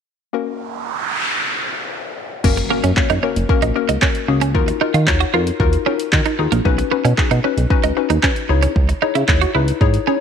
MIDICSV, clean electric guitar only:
0, 0, Header, 1, 3, 480
1, 0, Start_track
1, 0, Key_signature, 6, "major"
1, 0, Tempo, 526316
1, 307, Time_signature, 4, 2, 24, 8
1, 9307, End_track
2, 0, Start_track
2, 0, Title_t, "Clean electric guitar"
2, 0, Program_c, 0, 27
2, 2466, Note_on_c, 0, 58, 83
2, 2539, Note_off_c, 0, 58, 0
2, 2587, Note_on_c, 0, 61, 78
2, 2660, Note_off_c, 0, 61, 0
2, 2826, Note_on_c, 0, 63, 78
2, 2899, Note_off_c, 0, 63, 0
2, 2946, Note_on_c, 0, 61, 78
2, 3019, Note_off_c, 0, 61, 0
2, 3306, Note_on_c, 0, 63, 72
2, 3379, Note_off_c, 0, 63, 0
2, 3546, Note_on_c, 0, 63, 83
2, 3620, Note_off_c, 0, 63, 0
2, 3667, Note_on_c, 0, 61, 87
2, 3740, Note_off_c, 0, 61, 0
2, 4027, Note_on_c, 0, 61, 84
2, 4100, Note_off_c, 0, 61, 0
2, 4388, Note_on_c, 0, 63, 84
2, 4460, Note_off_c, 0, 63, 0
2, 4508, Note_on_c, 0, 65, 74
2, 4581, Note_off_c, 0, 65, 0
2, 4747, Note_on_c, 0, 66, 77
2, 4820, Note_off_c, 0, 66, 0
2, 4868, Note_on_c, 0, 65, 74
2, 4940, Note_off_c, 0, 65, 0
2, 5347, Note_on_c, 0, 61, 76
2, 5420, Note_off_c, 0, 61, 0
2, 5707, Note_on_c, 0, 63, 74
2, 5780, Note_off_c, 0, 63, 0
2, 5946, Note_on_c, 0, 58, 72
2, 6019, Note_off_c, 0, 58, 0
2, 6307, Note_on_c, 0, 59, 85
2, 6380, Note_off_c, 0, 59, 0
2, 6426, Note_on_c, 0, 61, 79
2, 6499, Note_off_c, 0, 61, 0
2, 6667, Note_on_c, 0, 63, 74
2, 6740, Note_off_c, 0, 63, 0
2, 6787, Note_on_c, 0, 61, 80
2, 6860, Note_off_c, 0, 61, 0
2, 7147, Note_on_c, 0, 63, 76
2, 7220, Note_off_c, 0, 63, 0
2, 7387, Note_on_c, 0, 63, 81
2, 7460, Note_off_c, 0, 63, 0
2, 7507, Note_on_c, 0, 61, 88
2, 7580, Note_off_c, 0, 61, 0
2, 7867, Note_on_c, 0, 61, 81
2, 7940, Note_off_c, 0, 61, 0
2, 8227, Note_on_c, 0, 63, 81
2, 8300, Note_off_c, 0, 63, 0
2, 8347, Note_on_c, 0, 64, 72
2, 8420, Note_off_c, 0, 64, 0
2, 8586, Note_on_c, 0, 66, 80
2, 8659, Note_off_c, 0, 66, 0
2, 8707, Note_on_c, 0, 64, 71
2, 8780, Note_off_c, 0, 64, 0
2, 9186, Note_on_c, 0, 61, 78
2, 9260, Note_off_c, 0, 61, 0
2, 9307, End_track
3, 0, Start_track
3, 0, Title_t, "Muted clean electric guitar strokes"
3, 2347, Note_on_c, 9, 29, 47
3, 2438, Note_off_c, 9, 29, 0
3, 2706, Note_on_c, 9, 29, 48
3, 2798, Note_off_c, 9, 29, 0
3, 3427, Note_on_c, 9, 29, 43
3, 3518, Note_off_c, 9, 29, 0
3, 3906, Note_on_c, 9, 29, 45
3, 3998, Note_off_c, 9, 29, 0
3, 4268, Note_on_c, 9, 29, 44
3, 4359, Note_off_c, 9, 29, 0
3, 4628, Note_on_c, 9, 29, 50
3, 4719, Note_off_c, 9, 29, 0
3, 5827, Note_on_c, 9, 29, 45
3, 5918, Note_off_c, 9, 29, 0
3, 6187, Note_on_c, 9, 29, 43
3, 6279, Note_off_c, 9, 29, 0
3, 6547, Note_on_c, 9, 29, 48
3, 6638, Note_off_c, 9, 29, 0
3, 7267, Note_on_c, 9, 29, 43
3, 7359, Note_off_c, 9, 29, 0
3, 7746, Note_on_c, 9, 29, 45
3, 7837, Note_off_c, 9, 29, 0
3, 8106, Note_on_c, 9, 29, 45
3, 8198, Note_off_c, 9, 29, 0
3, 8467, Note_on_c, 9, 29, 48
3, 8559, Note_off_c, 9, 29, 0
3, 9307, End_track
0, 0, End_of_file